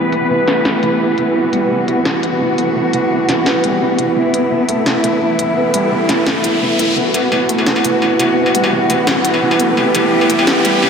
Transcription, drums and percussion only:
0.12 closed hi-hat
0.48 snare, closed hi-hat
0.65 snare
0.83 closed hi-hat
1.18 closed hi-hat
1.53 closed hi-hat
1.88 closed hi-hat
2.05 snare
2.23 closed hi-hat
2.58 closed hi-hat
2.93 closed hi-hat
3.29 snare, closed hi-hat
3.46 snare
3.64 closed hi-hat
3.99 closed hi-hat
4.34 closed hi-hat
4.69 closed hi-hat
4.86 snare
5.04 closed hi-hat
5.39 closed hi-hat
5.74 closed hi-hat
6.09 snare, closed hi-hat
6.26 snare
6.44 closed hi-hat
6.79 closed hi-hat
7.14 closed hi-hat, struck metal
7.32 struck metal
7.49 closed hi-hat
7.58 struck metal
7.67 snare
7.76 struck metal
7.84 closed hi-hat
8.02 struck metal
8.20 closed hi-hat, struck metal
8.46 struck metal
8.55 closed hi-hat
8.64 struck metal
8.90 closed hi-hat, struck metal
9.07 snare, struck metal
9.25 closed hi-hat
9.34 struck metal
9.51 struck metal
9.60 closed hi-hat
9.77 struck metal
9.95 closed hi-hat, struck metal
10.21 struck metal
10.30 closed hi-hat
10.39 struck metal
10.47 snare
10.65 closed hi-hat, struck metal
10.82 struck metal

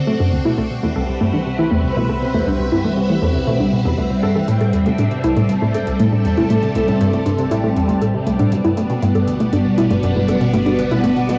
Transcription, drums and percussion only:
4.48 closed hi-hat
4.61 closed hi-hat
4.73 closed hi-hat
4.86 closed hi-hat, high conga
4.99 closed hi-hat
5.11 closed hi-hat
5.24 closed hi-hat
5.37 closed hi-hat
5.49 closed hi-hat
5.74 closed hi-hat
5.87 closed hi-hat
5.99 closed hi-hat
6.25 closed hi-hat
6.37 closed hi-hat, high conga
6.50 closed hi-hat
6.63 closed hi-hat
6.75 closed hi-hat
6.88 closed hi-hat, high conga
7.00 closed hi-hat
7.13 closed hi-hat
7.26 closed hi-hat
7.38 closed hi-hat
7.51 closed hi-hat
7.76 closed hi-hat, high conga
7.89 closed hi-hat
8.01 closed hi-hat
8.27 closed hi-hat
8.39 closed hi-hat
8.52 closed hi-hat
8.64 closed hi-hat
8.77 closed hi-hat
8.90 closed hi-hat, high conga
9.02 closed hi-hat
9.15 closed hi-hat
9.27 closed hi-hat
9.40 closed hi-hat
9.53 closed hi-hat
9.78 closed hi-hat
9.90 closed hi-hat
10.03 closed hi-hat
10.28 closed hi-hat
10.41 closed hi-hat, high conga
10.54 closed hi-hat
10.66 closed hi-hat
10.79 closed hi-hat
10.91 closed hi-hat, high conga
11.04 closed hi-hat
11.17 closed hi-hat
11.29 closed hi-hat

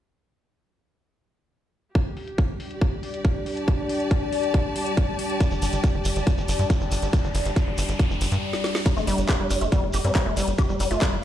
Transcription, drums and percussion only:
1.95 kick, closed hi-hat
2.17 open hi-hat
2.28 closed hi-hat
2.38 kick, closed hi-hat
2.60 open hi-hat
2.71 closed hi-hat
2.81 kick, closed hi-hat
3.03 open hi-hat
3.14 closed hi-hat
3.25 kick, closed hi-hat
3.46 open hi-hat
3.57 closed hi-hat
3.68 kick, closed hi-hat
3.89 open hi-hat
4.00 closed hi-hat
4.11 kick, closed hi-hat
4.33 open hi-hat
4.43 closed hi-hat
4.54 kick, closed hi-hat
4.76 open hi-hat
4.86 closed hi-hat
4.97 kick, closed hi-hat
5.19 open hi-hat
5.30 closed hi-hat
5.40 kick, closed hi-hat, shekere
5.51 shekere
5.62 open hi-hat, shekere
5.72 closed hi-hat, shekere
5.84 kick, closed hi-hat, shekere
6.05 open hi-hat, shekere
6.16 closed hi-hat, shekere
6.27 kick, closed hi-hat, shekere
6.38 shekere
6.48 open hi-hat, shekere
6.59 closed hi-hat, shekere
6.70 kick, closed hi-hat, shekere
6.81 shekere
6.92 open hi-hat, shekere
7.02 closed hi-hat, shekere
7.13 kick, closed hi-hat, shekere
7.24 shekere
7.34 open hi-hat, shekere
7.45 closed hi-hat, shekere
7.56 kick, closed hi-hat, shekere
7.78 open hi-hat, shekere
7.88 closed hi-hat, shekere
7.99 kick, closed hi-hat, shekere
8.11 shekere
8.21 open hi-hat, shekere
8.32 closed hi-hat, shekere
8.53 snare
8.64 snare
8.75 snare
8.86 kick, closed hi-hat, shekere
8.97 shekere
9.07 open hi-hat, shekere
9.18 closed hi-hat, shekere
9.29 kick, clap, closed hi-hat, shekere
9.50 open hi-hat, shekere
9.61 closed hi-hat, shekere
9.72 kick, closed hi-hat, shekere
9.93 open hi-hat, shekere
10.04 closed hi-hat, shekere
10.15 kick, clap, closed hi-hat, shekere
10.37 open hi-hat, shekere
10.48 closed hi-hat, shekere
10.58 kick, closed hi-hat, shekere
10.69 shekere
10.80 open hi-hat, shekere
10.91 closed hi-hat, shekere
11.02 kick, clap, closed hi-hat, shekere

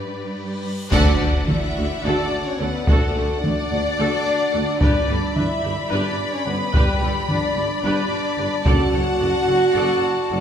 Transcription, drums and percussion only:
0.92 concert bass drum, taiko, crash
1.48 taiko mid
2.87 taiko
3.44 taiko mid
4.81 taiko
5.36 taiko mid
6.74 taiko
7.29 taiko mid
8.66 taiko

